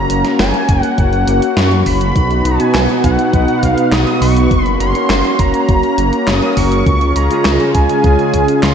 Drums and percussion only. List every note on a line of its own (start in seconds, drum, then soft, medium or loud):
0.10 closed hi-hat medium
0.25 snare soft
0.25 closed hi-hat medium
0.39 snare loud
0.39 closed hi-hat medium
0.54 closed hi-hat soft
0.69 kick loud
0.69 closed hi-hat medium
0.83 closed hi-hat medium
0.98 kick loud
0.98 closed hi-hat medium
1.13 closed hi-hat soft
1.28 closed hi-hat medium
1.42 closed hi-hat medium
1.57 snare loud
1.57 closed hi-hat medium
1.71 closed hi-hat soft
1.86 kick medium
1.86 open hi-hat medium
2.01 closed hi-hat medium
2.16 kick loud
2.16 closed hi-hat medium
2.31 closed hi-hat soft
2.45 closed hi-hat medium
2.60 closed hi-hat medium
2.75 snare loud
2.75 clap medium
2.75 closed hi-hat medium
2.89 closed hi-hat soft
3.04 kick loud
3.04 closed hi-hat medium
3.19 closed hi-hat medium
3.33 kick loud
3.33 closed hi-hat soft
3.48 closed hi-hat soft
3.63 kick medium
3.63 closed hi-hat medium
3.78 closed hi-hat soft
3.92 snare loud
3.92 clap medium
3.92 closed hi-hat medium
4.07 closed hi-hat soft
4.22 open hi-hat medium
4.37 closed hi-hat medium
4.51 kick loud
4.51 closed hi-hat medium
4.66 closed hi-hat soft
4.80 closed hi-hat medium
4.95 closed hi-hat medium
5.10 snare loud
5.10 clap loud
5.10 closed hi-hat medium
5.25 closed hi-hat soft
5.39 kick loud
5.39 closed hi-hat medium
5.54 closed hi-hat soft
5.69 kick loud
5.69 closed hi-hat medium
5.83 closed hi-hat soft
5.98 closed hi-hat medium
6.13 closed hi-hat soft
6.27 snare loud
6.27 clap loud
6.27 closed hi-hat medium
6.42 closed hi-hat soft
6.57 kick medium
6.57 open hi-hat medium
6.72 closed hi-hat medium
6.86 kick loud
6.86 closed hi-hat medium
7.01 closed hi-hat soft
7.16 closed hi-hat medium
7.31 closed hi-hat medium
7.45 snare loud
7.45 clap loud
7.45 closed hi-hat medium
7.60 closed hi-hat soft
7.75 kick loud
7.75 closed hi-hat medium
7.89 closed hi-hat medium
8.04 kick loud
8.04 closed hi-hat medium
8.19 closed hi-hat soft
8.34 kick medium
8.34 closed hi-hat medium
8.48 closed hi-hat medium
8.63 snare loud
8.63 clap loud
8.63 closed hi-hat medium